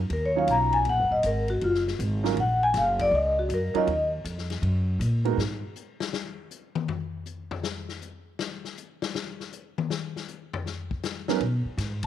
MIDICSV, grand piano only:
0, 0, Header, 1, 2, 480
1, 0, Start_track
1, 0, Key_signature, -6, "minor"
1, 0, Tempo, 376884
1, 1093, Time_signature, 4, 2, 24, 8
1, 15366, End_track
2, 0, Start_track
2, 0, Title_t, "Grand piano"
2, 0, Program_c, 0, 0
2, 447, Note_on_c, 0, 54, 54
2, 459, Note_on_c, 0, 61, 51
2, 462, Note_on_c, 0, 63, 50
2, 463, Note_on_c, 0, 65, 53
2, 469, Note_on_c, 0, 73, 62
2, 1059, Note_off_c, 0, 54, 0
2, 1065, Note_off_c, 0, 61, 0
2, 1066, Note_off_c, 0, 63, 0
2, 1067, Note_off_c, 0, 65, 0
2, 1070, Note_off_c, 0, 73, 0
2, 2848, Note_on_c, 0, 54, 68
2, 2852, Note_on_c, 0, 61, 59
2, 2854, Note_on_c, 0, 63, 58
2, 2861, Note_on_c, 0, 65, 63
2, 2867, Note_on_c, 0, 70, 70
2, 2995, Note_off_c, 0, 54, 0
2, 2997, Note_off_c, 0, 61, 0
2, 2998, Note_off_c, 0, 63, 0
2, 3002, Note_off_c, 0, 65, 0
2, 3005, Note_off_c, 0, 70, 0
2, 4763, Note_on_c, 0, 54, 74
2, 4773, Note_on_c, 0, 61, 64
2, 4779, Note_on_c, 0, 63, 62
2, 4781, Note_on_c, 0, 70, 81
2, 4786, Note_on_c, 0, 65, 67
2, 4913, Note_off_c, 0, 54, 0
2, 4918, Note_off_c, 0, 61, 0
2, 4921, Note_off_c, 0, 63, 0
2, 4922, Note_off_c, 0, 70, 0
2, 4924, Note_off_c, 0, 65, 0
2, 6685, Note_on_c, 0, 56, 65
2, 6688, Note_on_c, 0, 59, 57
2, 6689, Note_on_c, 0, 63, 58
2, 6695, Note_on_c, 0, 70, 65
2, 6698, Note_on_c, 0, 66, 59
2, 6834, Note_off_c, 0, 56, 0
2, 6835, Note_off_c, 0, 59, 0
2, 6836, Note_off_c, 0, 63, 0
2, 6839, Note_off_c, 0, 70, 0
2, 6840, Note_off_c, 0, 66, 0
2, 14369, Note_on_c, 0, 54, 70
2, 14378, Note_on_c, 0, 59, 66
2, 14378, Note_on_c, 0, 61, 66
2, 14384, Note_on_c, 0, 63, 67
2, 14388, Note_on_c, 0, 70, 74
2, 14516, Note_off_c, 0, 54, 0
2, 14520, Note_off_c, 0, 59, 0
2, 14520, Note_off_c, 0, 61, 0
2, 14523, Note_off_c, 0, 63, 0
2, 14525, Note_off_c, 0, 70, 0
2, 15366, End_track
0, 0, End_of_file